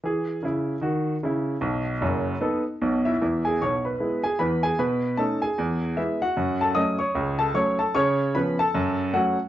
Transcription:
X:1
M:4/4
L:1/8
Q:"Swing" 1/4=152
K:E
V:1 name="Grand piano"
z8 | z6 z [Ee]- | [Ee] [Gg] [cc'] [Bb]2 [Gg] [Bb] [Gg] | [Bb]2 [Aa] [Gg]3 [Ee] [Ff]- |
[Ff] [Aa] [dd'] [cc']2 [Aa] [cc'] [Aa] | [cc']2 [Bb] [Aa]3 [Ff] z |]
V:2 name="Grand piano" clef=bass
[E,G]2 [C,E]2 [D,F]2 [C,E]2 | [B,,,B,,]2 [F,,,F,,]2 [B,DA]2 [B,,,B,,]2 | [E,,E,]2 [B,,,B,,]2 [G,B,E]2 [E,,E,]2 | B,,2 [A,CD]2 E,,2 [G,B,]2 |
F,,2 [F,A,C]2 C,,2 [F,A,C]2 | C,2 [^E,B,C]2 F,,2 [F,A,C]2 |]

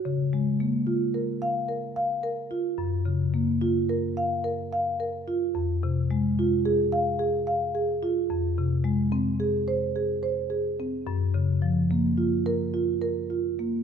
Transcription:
X:1
M:5/4
L:1/8
Q:1/4=109
K:Gblyd
V:1 name="Marimba"
D, A, B, F B f B f B F | G,, D, B, F B f B f B F | [K:Fphr] F,, C, A, F A f A f A F | F,, C, A, C A c A c A C |
G,, D, F, B, F B F B F B, |]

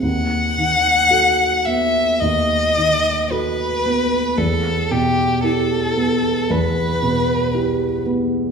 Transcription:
X:1
M:4/4
L:1/8
Q:1/4=57
K:Bphr
V:1 name="Violin"
f3 e ^d2 B2 | A G A2 B3 z |]
V:2 name="Grand piano"
^D,, ^D, [FA] B, D,, D, [FA] B, | E,, B,, [EG] B, E,, B,, [EG] B, |]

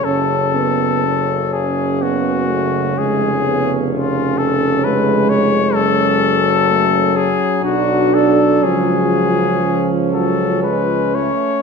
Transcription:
X:1
M:3/4
L:1/8
Q:1/4=62
K:F#m
V:1 name="Cornet"
A3 G F2 | G2 ^E A B c | A3 G F A | G3 A B c |]
V:2 name="Flugelhorn"
C6- | C6 | C3 z D2 | C6 |]
V:3 name="Euphonium"
C B, C2 B, A, | G, B, C2 G,2- | G, z A, C D2 | ^E,4- E, z |]
V:4 name="Trombone section" clef=bass
C,6- | C,6 | F,6- | F,2 ^E, F, G, A, |]
V:5 name="Tuba" clef=bass
F,,,6 | ^E,,,6 | F,,,3 z B,,,2 | C,,4- C,, z |]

